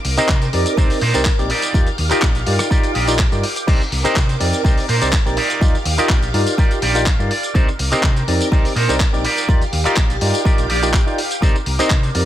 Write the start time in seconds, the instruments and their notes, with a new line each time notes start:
Already playing: string machine A#4 D6
0.05 fingered electric bass C2, muted clean electric guitar stroke, open hi-hat
0.17 tine electric piano C4 D#4 G4 A#4 D#5, clean electric guitar D4 D#4 A#4 C5, muted fingered electric bass stroke, closed hi-hat, tambourine
0.29 fingered electric bass C3, kick, clap, tambourine
0.42 closed hi-hat, tambourine
0.53 fingered electric bass F2, tine electric piano C4 D#4 G4 A#4 D5, open hi-hat
0.66 closed hi-hat, tambourine
0.77 fingered electric bass C2, tine electric piano C4 D#4 G4 A#4 D5, clean electric guitar D4 D#4 A#4 C5, kick, tambourine
0.90 open hi-hat, tambourine
1.01 fingered electric bass A#2, clean electric guitar D4 D#4 A#4 C5, open hi-hat
1.14 fingered electric bass C2, tine electric piano C4 D#4 G4 A#4 D5, closed hi-hat, tambourine
1.25 kick, clap, tambourine
1.38 fingered electric bass A#1, tine electric piano C4 D#4 G4 A#4 D5, muted clean electric guitar stroke, tambourine
1.50 clean electric guitar D#4 F4 G4 D5, string machine G4 F5, open hi-hat
1.62 closed hi-hat, tambourine
1.74 fingered electric bass D#2, tine electric piano D#4 F4 G4 A#4 D5, kick, tambourine
1.87 closed hi-hat, tambourine
1.98 fingered electric bass D#2, muted clean electric guitar stroke, open hi-hat
2.10 clean electric guitar D#4 F4 G4 D5, tine electric piano D#4 F4 G4 A#4 D#5, muted fingered electric bass stroke, clap, closed hi-hat, tambourine
2.22 fingered electric bass A#1, kick, cross-stick, clap, tambourine
2.35 closed hi-hat, tambourine
2.46 fingered electric bass G2, tine electric piano D#4 F4 G4 A#4 D5, open hi-hat
2.59 cross-stick, closed hi-hat, tambourine
2.70 clean electric guitar D#4 F4 G4 D5, tine electric piano D#4 F4 G4 A#4 D5, kick, tambourine
2.83 closed hi-hat, tambourine
2.95 fingered electric bass A#1, clean electric guitar D#4 F4 G4 D5, open hi-hat
3.08 tine electric piano D#4 F4 G4 A#4 D5, closed hi-hat, tambourine
3.19 kick, clap, tambourine
3.31 fingered electric bass G2, tine electric piano D#4 F4 G4 A#4 D5, muted clean electric guitar stroke, closed hi-hat, tambourine
3.43 open hi-hat
3.56 closed hi-hat, tambourine
3.67 fingered electric bass C2, tine electric piano C4 D#4 G4 A#4 D5, clean electric guitar D4 D#4 A#4 C5, string machine A#4, kick, crash, tambourine
3.81 tambourine
3.92 fingered electric bass C2, muted clean electric guitar stroke, open hi-hat
4.04 tine electric piano C4 D#4 G4 A#4 D#5, clean electric guitar D4 D#4 A#4 C5, muted fingered electric bass stroke, closed hi-hat, tambourine
4.16 fingered electric bass C3, kick, clap, tambourine
4.29 closed hi-hat, tambourine
4.40 fingered electric bass F2, tine electric piano C4 D#4 G4 A#4 D5, open hi-hat
4.53 closed hi-hat, tambourine
4.64 fingered electric bass C2, tine electric piano C4 D#4 G4 A#4 D5, clean electric guitar D4 D#4 A#4 C5, kick, tambourine
4.77 open hi-hat, tambourine
4.89 fingered electric bass A#2, clean electric guitar D4 D#4 A#4 C5, open hi-hat
5.01 fingered electric bass C2, tine electric piano C4 D#4 G4 A#4 D5, closed hi-hat, tambourine
5.13 kick, clap, tambourine
5.26 fingered electric bass A#1, tine electric piano C4 D#4 G4 A#4 D5, muted clean electric guitar stroke, tambourine
5.37 clean electric guitar D#4 F4 G4 D5, string machine G4 F5, open hi-hat
5.50 closed hi-hat, tambourine
5.61 fingered electric bass D#2, tine electric piano D#4 F4 G4 A#4 D5, kick, tambourine
5.75 tambourine
5.85 fingered electric bass D#2, muted clean electric guitar stroke, open hi-hat
5.98 clean electric guitar D#4 F4 G4 D5, tine electric piano D#4 F4 G4 A#4 D#5, muted fingered electric bass stroke, closed hi-hat, tambourine
6.09 fingered electric bass A#1, kick, clap, tambourine
6.22 closed hi-hat, tambourine
6.34 fingered electric bass G2, tine electric piano D#4 F4 G4 A#4 D5, open hi-hat
6.47 closed hi-hat, tambourine
6.58 clean electric guitar D#4 F4 G4 D5, tine electric piano D#4 F4 G4 A#4 D5, kick, tambourine
6.71 closed hi-hat, tambourine
6.82 fingered electric bass A#1, clean electric guitar D#4 F4 G4 D5 G5, open hi-hat
6.95 tine electric piano D#4 F4 G4 A#4 D5, closed hi-hat, tambourine
7.06 clean electric guitar F5, kick, clap, tambourine
7.19 fingered electric bass G2, tine electric piano D#4 F4 G4 A#4 D5, muted clean electric guitar stroke, tambourine
7.31 clean electric guitar D5, open hi-hat
7.43 closed hi-hat, tambourine
7.54 fingered electric bass C2, tine electric piano C4 D#4 G4 A#4 D5, clean electric guitar D4 D#4 A#4 C5, string machine A#4 D6, kick, tambourine
7.69 tambourine
7.79 fingered electric bass C2, muted clean electric guitar stroke, open hi-hat
7.91 tine electric piano C4 D#4 G4 A#4 D#5, clean electric guitar D4 D#4 A#4 C5, muted fingered electric bass stroke, closed hi-hat, tambourine
8.03 fingered electric bass C3, kick, clap, tambourine
8.16 closed hi-hat, tambourine
8.28 fingered electric bass F2, tine electric piano C4 D#4 G4 A#4 D5, open hi-hat
8.41 closed hi-hat, tambourine
8.51 fingered electric bass C2, tine electric piano C4 D#4 G4 A#4 D5, clean electric guitar D4 D#4 A#4 C5, kick, tambourine
8.65 open hi-hat, tambourine
8.76 fingered electric bass A#2, clean electric guitar D4 D#4 A#4 C5, open hi-hat
8.89 fingered electric bass C2, tine electric piano C4 D#4 G4 A#4 D5, closed hi-hat, tambourine
9.00 kick, clap, tambourine
9.13 fingered electric bass A#1, tine electric piano C4 D#4 G4 A#4 D5, muted clean electric guitar stroke, tambourine
9.24 clean electric guitar D#4 F4 G4 D5, string machine G4 F5 D6, open hi-hat
9.37 closed hi-hat, tambourine
9.49 fingered electric bass D#2, tine electric piano D#4 F4 G4 A#4 D5, kick, tambourine
9.62 closed hi-hat, tambourine
9.72 fingered electric bass D#2, muted clean electric guitar stroke, open hi-hat
9.85 clean electric guitar D#4 F4 G4 D5, tine electric piano D#4 F4 G4 A#4 D#5, muted fingered electric bass stroke, clap, closed hi-hat, tambourine
9.96 fingered electric bass A#1, kick, clap, tambourine
10.10 closed hi-hat, tambourine
10.21 fingered electric bass G2, tine electric piano D#4 F4 G4 A#4 D5, open hi-hat
10.34 closed hi-hat, tambourine
10.45 tine electric piano D#4 F4 G4 A#4 D5, clean electric guitar D#4 F4 G4 D5, kick, tambourine
10.58 fingered electric bass A#1, closed hi-hat, tambourine
10.69 fingered electric bass A#1, clean electric guitar D#4 F4 G4 D5, open hi-hat
10.82 tine electric piano D#4 F4 G4 A#4 D5, closed hi-hat, tambourine
10.94 clean electric guitar G5, kick, clap, tambourine
11.06 tine electric piano D#4 F4 G4 A#4 D5, muted clean electric guitar stroke, tambourine
11.18 open hi-hat
11.31 closed hi-hat, tambourine
11.42 fingered electric bass C2, tine electric piano C4 D#4 G4 A#4 D5, clean electric guitar D4 D#4 A#4 C5, string machine A#4, kick, tambourine
11.56 tambourine
11.66 fingered electric bass C2, muted clean electric guitar stroke, open hi-hat
11.79 tine electric piano C4 D#4 G4 A#4 D#5, clean electric guitar D4 D#4 A#4 C5, muted fingered electric bass stroke, closed hi-hat, tambourine
11.90 fingered electric bass C3, kick, clap
12.03 closed hi-hat, tambourine
12.15 fingered electric bass F2, tine electric piano C4 D#4 G4 A#4 D5, open hi-hat